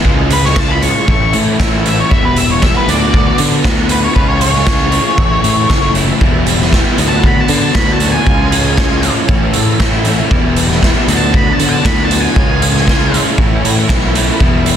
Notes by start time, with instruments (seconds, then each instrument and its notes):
0.02 picked electric bass C#2, overdriven electric guitar C#3 F3 G#3 C#4 F4, string machine G#4 C#5 F5 C#6, kick
0.30 lead electric guitar B4, closed hi-hat
0.45 lead electric guitar C#5, snare
0.56 overdriven electric guitar C#3 F3 G#3 C#4 F4, kick, snare
0.60 lead electric guitar A5
0.71 lead electric guitar B5
0.82 overdriven electric guitar C#3 F3 G#3 C#4 F4, lead electric guitar C#6, closed hi-hat
1.06 picked electric bass A1, overdriven electric guitar A2 E3 A3 C#4 E4, string machine A4 E5 B5, kick
1.11 lead electric guitar C#6
1.33 picked electric bass A2, closed hi-hat
1.58 picked electric bass A1, overdriven electric guitar A2 E3 A3 C#4 E4, kick, snare
1.83 overdriven electric guitar A2 E3 A3 C#4 E4, closed hi-hat
1.89 lead electric guitar E5
2.00 lead electric guitar C#5
2.09 picked electric bass E1, overdriven electric guitar E2 B2 E3 G3 B3 E4, string machine G4 B4, lead electric guitar E5, kick
2.25 lead electric guitar B4
2.36 lead electric guitar E5, closed hi-hat
2.51 lead electric guitar C#5
2.62 overdriven electric guitar E2 B2 E3 G3 B3 E4, lead electric guitar E5, kick, snare
2.77 lead electric guitar B4
2.86 picked electric bass D2, overdriven electric guitar D3 B3 D4 F#4, string machine D5 F#5 C#6, lead electric guitar D5, closed hi-hat
2.91 overdriven electric guitar F#3
3.13 overdriven electric guitar D3 F#3 B3 D4 F#4, kick
3.38 picked electric bass D3, closed hi-hat
3.64 picked electric bass D2, overdriven electric guitar D3 F#3 B3 D4 F#4, kick, snare
3.89 overdriven electric guitar D3 F#3 B3 D4 F#4, lead electric guitar B4, closed hi-hat
4.04 lead electric guitar C#5
4.15 picked electric bass C#2, overdriven electric guitar C#3 F3 G#3 C#4 F4, string machine G#4 C#5 F5, lead electric guitar B4, kick
4.28 lead electric guitar C#5
4.41 lead electric guitar C#5, closed hi-hat
4.55 snare
4.65 overdriven electric guitar C#3 F3 G#3 C#4 F4, kick, snare
4.92 overdriven electric guitar C#3 F3 G#3 C#4 F4, closed hi-hat
5.17 picked electric bass A1, overdriven electric guitar A2 E3 A3 C#4 E4, string machine A4 C#5 E5 B5, kick
5.44 picked electric bass A2, closed hi-hat
5.70 picked electric bass F#1, overdriven electric guitar A2 E3 A3 C#4 E4, kick, snare
5.95 overdriven electric guitar A2 E3 A3 C#4 E4, closed hi-hat
6.21 picked electric bass E1, overdriven electric guitar E2 B2 E3 G3 B3 E4, string machine G4 B4, kick
6.47 closed hi-hat
6.62 snare
6.73 overdriven electric guitar E2 B2 E3 G3 B3 E4, kick, snare
6.98 picked electric bass D2, overdriven electric guitar D3 F#3 B3 D4 F#4, string machine F#4 C#5 D5 B5, closed hi-hat
7.08 lead electric guitar A5
7.24 overdriven electric guitar D3 F#3 B3 D4 F#4, lead electric guitar B5, kick
7.40 lead electric guitar A5
7.48 picked electric bass D3, closed hi-hat
7.58 lead electric guitar A5
7.75 picked electric bass D2, overdriven electric guitar D3 F#3 B3 D4 F#4, lead electric guitar B5, kick, snare
7.93 lead electric guitar A5
8.00 overdriven electric guitar D3 F#3 B3 D4 F#4, closed hi-hat
8.12 lead electric guitar G#5
8.26 picked electric bass C#2, overdriven electric guitar C#3 F3 G#3 C#4 F4, string machine G#4 F5 C#6, kick
8.52 closed hi-hat
8.77 overdriven electric guitar C#3 F3 G#3 C#4 F4, kick, snare
9.02 overdriven electric guitar C#3 F3 G#3 C#4 F4, closed hi-hat
9.27 picked electric bass A1, overdriven electric guitar A2 E3 A3 C#4 E4, string machine A4 E5 B5, kick
9.53 picked electric bass A2, closed hi-hat
9.79 picked electric bass A1, overdriven electric guitar A2 E3 A3 C#4 E4, kick, snare
10.05 overdriven electric guitar A2 E3 A3 C#4 E4, closed hi-hat
10.31 picked electric bass E1, overdriven electric guitar E2 B2 E3 G3 B3 E4, string machine G4 B4, kick
10.56 closed hi-hat
10.71 snare
10.82 overdriven electric guitar E2 B2 E3 G3 B3 E4, kick, snare
11.07 picked electric bass D2, overdriven electric guitar D3 F#3 B3 D4 F#4, string machine F#4 C#5 D5, closed hi-hat
11.17 lead electric guitar A5
11.32 overdriven electric guitar D3 F#3 B3 D4 F#4, lead electric guitar B5, kick
11.53 lead electric guitar A5
11.60 picked electric bass D3, closed hi-hat
11.69 lead electric guitar A5
11.84 picked electric bass D2, overdriven electric guitar D3 F#3 B3 D4 F#4, lead electric guitar B5, kick, snare
12.05 lead electric guitar A5
12.10 overdriven electric guitar D3 F#3 B3 D4 F#4, closed hi-hat
12.20 lead electric guitar G#5
12.36 picked electric bass C#2, overdriven electric guitar C#3 F3 G#3 C#4 F4, string machine G#4 F5 C#6, kick
12.62 closed hi-hat
12.77 snare
12.88 overdriven electric guitar C#3 F3 G#3 C#4 F4, kick, snare
13.12 overdriven electric guitar C#3 F3 G#3 C#4 F4, closed hi-hat
13.37 picked electric bass A1, overdriven electric guitar A2 E3 A3 C#4 E4, string machine A4 E5 B5, kick
13.64 picked electric bass A2, closed hi-hat
13.89 picked electric bass B1, overdriven electric guitar A2 E3 A3 C#4 E4, kick, snare
14.15 overdriven electric guitar A2 E3 A3 C#4 E4, closed hi-hat
14.39 picked electric bass E1, overdriven electric guitar E2 B2 E3 G3 B3 E4, string machine G4 B4, kick
14.66 closed hi-hat